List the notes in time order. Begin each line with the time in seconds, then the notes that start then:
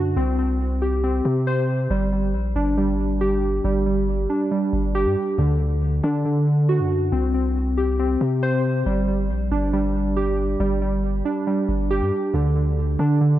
Already playing: F#2 D3 D4 F#4
0.17 C2 C4
0.39 C4
0.82 G4
1.04 C4
1.25 C3
1.47 C5
1.90 G1 G3
2.12 G3
2.34 A#1
2.56 G1 D4
2.78 G3
3.21 G4
3.64 G1 G3
3.86 G3
4.30 D4
4.51 G3
4.73 G1
4.95 G4
5.06 G2
5.38 D2 D3
5.60 D3
6.04 D3 D4
6.25 D3
6.69 F#4
6.80 F#2
7.12 C2 C4
7.34 C4
7.77 G4
7.99 C4
8.21 C3
8.43 C5
8.86 G1 G3
9.08 G3
9.30 A#1
9.51 G1 D4
9.73 G3
10.17 G4
10.60 G1 G3
10.82 G3
11.25 D4
11.47 G3
11.69 G1
11.91 G4
12.01 G2
12.34 D2 D3
12.56 D3
12.99 D3 D4
13.21 D3